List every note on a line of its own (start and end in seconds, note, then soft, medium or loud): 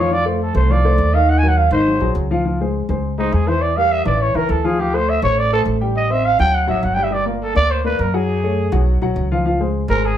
0.00 0.49 F2 medium
0.00 0.14 C#5 medium
0.11 0.23 F3 medium
0.11 0.23 F4 medium
0.11 0.27 D5 loud
0.11 0.23 F5 medium
0.25 0.50 A3 medium
0.25 0.43 F4 medium
0.25 0.50 A4 medium
0.25 0.50 C5 medium
0.42 0.55 A4 medium
0.54 0.96 C2 loud
0.54 0.67 A3 medium
0.54 0.67 A4 medium
0.54 0.67 C5 medium
0.54 0.73 C5 medium
0.69 0.81 F3 medium
0.69 0.82 F4 medium
0.69 1.16 D5 medium
0.69 0.82 F5 medium
0.85 1.08 A3 medium
0.85 1.08 A4 medium
0.85 1.09 C5 medium
0.98 1.66 D#2 loud
1.13 1.37 D#3 medium
1.13 1.38 D#4 loud
1.13 1.38 D#5 loud
1.13 1.31 F5 medium
1.29 1.40 F#5 loud
1.38 1.50 G#5 loud
1.42 1.66 F#3 medium
1.42 1.67 F#4 medium
1.42 1.67 A#4 medium
1.48 1.59 F#5 medium
1.57 1.72 F5 medium
1.71 1.98 G#1 medium
1.71 1.84 D#3 medium
1.71 1.84 D#4 medium
1.71 2.13 C5 medium
1.71 1.84 D#5 medium
1.87 1.99 F#3 medium
1.87 1.99 F#4 medium
1.87 1.99 G#4 medium
2.00 2.14 A#1 medium
2.00 2.25 F#3 medium
2.00 2.25 F#4 medium
2.00 2.25 G#4 medium
2.15 2.83 C#2 medium
2.31 2.43 F3 medium
2.31 2.43 F4 medium
2.31 2.43 F5 medium
2.45 2.57 F3 medium
2.45 2.57 F4 medium
2.45 2.57 F5 medium
2.61 2.84 G#3 medium
2.61 2.84 G#4 medium
2.61 2.84 C5 medium
2.89 3.30 C#2 medium
2.89 3.13 G#3 medium
2.89 3.13 G#4 medium
2.89 3.13 C5 medium
3.18 3.42 G#3 medium
3.18 3.35 D#4 medium
3.18 3.42 G#4 medium
3.18 3.43 C5 medium
3.32 4.00 E2 medium
3.32 3.49 G#4 medium
3.47 3.71 E3 medium
3.47 3.71 E4 medium
3.47 3.63 C5 loud
3.47 3.72 E5 medium
3.62 3.78 D5 loud
3.77 4.01 G3 medium
3.77 4.01 G4 medium
3.77 4.01 A#4 medium
3.77 3.93 F5 loud
3.92 4.05 E5 loud
4.05 4.33 A1 medium
4.05 4.30 E3 medium
4.05 4.30 E4 medium
4.05 4.23 D5 medium
4.05 4.30 E5 medium
4.21 4.37 C#5 medium
4.34 4.48 C#2 medium
4.34 4.59 E3 loud
4.34 4.59 E4 medium
4.34 4.52 A#4 medium
4.34 4.59 E5 medium
4.49 5.17 D2 medium
4.49 4.67 A4 medium
4.64 4.76 F3 medium
4.64 4.76 F4 medium
4.64 4.81 G#4 medium
4.64 4.76 F5 medium
4.79 4.91 F3 medium
4.79 4.91 F4 medium
4.79 4.96 G4 medium
4.79 4.91 F5 medium
4.93 5.17 A3 medium
4.93 5.18 A4 medium
4.93 5.18 C5 medium
4.93 5.11 C5 loud
5.09 5.23 E5 loud
5.22 5.63 A1 loud
5.22 5.47 A3 medium
5.22 5.47 A4 medium
5.22 5.47 C5 medium
5.22 5.40 C#5 loud
5.38 5.52 D5 loud
5.52 5.76 A3 medium
5.52 5.76 A4 medium
5.52 5.62 A4 medium
5.52 5.76 C5 medium
5.65 6.33 A1 medium
5.81 6.05 G3 medium
5.81 6.05 G4 medium
5.81 6.05 G5 medium
5.96 6.13 D#5 medium
6.10 6.34 C4 medium
6.10 6.34 C5 medium
6.10 6.34 D#5 medium
6.10 6.27 E5 loud
6.26 6.39 F5 loud
6.39 6.66 D2 medium
6.39 6.63 F#3 medium
6.39 6.63 F#4 medium
6.39 6.63 F#5 medium
6.39 6.56 G5 loud
6.55 6.68 F#5 loud
6.67 6.82 A1 medium
6.67 6.92 F#3 medium
6.67 6.92 F#4 medium
6.67 6.86 E5 medium
6.67 6.92 F#5 medium
6.83 7.50 G1 medium
6.83 6.96 F#5 medium
6.94 7.09 G3 medium
6.94 7.09 G4 medium
6.94 7.05 G5 loud
6.94 7.09 G5 medium
7.03 7.15 E5 medium
7.11 7.23 G3 medium
7.11 7.23 G4 medium
7.11 7.27 D5 medium
7.11 7.24 G5 medium
7.26 7.50 A#3 medium
7.26 7.43 F4 medium
7.26 7.50 A#4 medium
7.26 7.50 D5 medium
7.42 7.56 A4 medium
7.54 7.96 D2 medium
7.54 7.79 A#3 medium
7.54 7.79 A#4 medium
7.54 7.79 D5 medium
7.54 7.72 D5 loud
7.71 7.85 C5 medium
7.84 8.09 A#3 medium
7.84 8.09 A#4 medium
7.84 8.02 B4 loud
7.84 8.09 D5 medium
7.99 8.67 F#2 medium
7.99 8.16 A#4 medium
8.14 8.38 F#3 medium
8.14 8.38 F#4 medium
8.14 8.88 G#4 loud
8.14 8.38 F#5 medium
8.43 8.67 A3 medium
8.43 8.67 A4 medium
8.43 8.68 C#5 medium
8.72 8.99 B1 loud
8.72 8.96 F#3 medium
8.72 8.96 F#4 medium
8.72 8.96 F#5 medium
9.01 9.15 B1 medium
9.01 9.26 F#3 medium
9.01 9.26 F#4 medium
9.01 9.26 F#5 medium
9.16 9.84 C#2 medium
9.31 9.43 F3 medium
9.31 9.43 F4 medium
9.31 9.44 F5 medium
9.45 9.57 F3 medium
9.45 9.58 F4 medium
9.45 9.58 F5 medium
9.60 9.84 G#3 medium
9.60 9.84 G#4 medium
9.60 9.84 C5 medium
9.88 10.18 G#1 loud
9.88 10.13 G#3 medium
9.88 10.14 G#4 medium
9.88 10.07 A#4 loud
9.88 10.14 C5 medium
10.05 10.18 G#4 medium